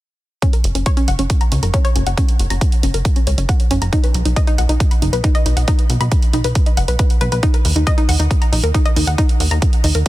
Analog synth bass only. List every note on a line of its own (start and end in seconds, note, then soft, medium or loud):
0.64 0.72 F#1 medium
0.75 0.83 F#1 medium
1.08 1.16 F#1 medium
1.19 1.27 F#1 medium
1.52 1.60 C#2 medium
1.63 1.71 F#1 medium
1.96 2.04 F#1 medium
2.07 2.15 F#1 medium
2.39 2.48 F#1 medium
2.50 2.59 F#1 medium
2.83 2.91 F#1 medium
2.94 3.02 F#1 medium
3.27 3.35 C#2 medium
3.38 3.46 F#1 medium
3.71 3.79 F#1 medium
3.82 3.90 F#1 medium
4.15 4.23 B1 medium
4.25 4.34 B1 medium
4.58 4.66 B1 medium
4.69 4.77 B1 medium
5.02 5.10 F#1 medium
5.13 5.21 B1 medium
5.46 5.54 B1 medium
5.57 5.65 B1 medium
5.90 5.98 B1 medium
6.00 6.09 B1 medium
6.33 6.42 B1 medium
6.44 6.53 B1 medium
6.77 6.86 F#1 medium
6.88 6.96 B1 medium
7.21 7.29 B1 medium
7.32 7.40 B1 medium
7.65 7.73 D#2 medium
7.76 7.84 D#2 medium
8.09 8.17 D#2 medium
8.20 8.28 D#2 medium
8.52 8.61 A#1 medium
8.63 8.72 D#2 medium
8.96 9.04 D#2 medium
9.07 9.15 D#2 medium
9.40 9.48 D#2 medium
9.51 9.59 D#2 medium
9.84 9.92 D#2 medium
9.95 10.03 D#2 medium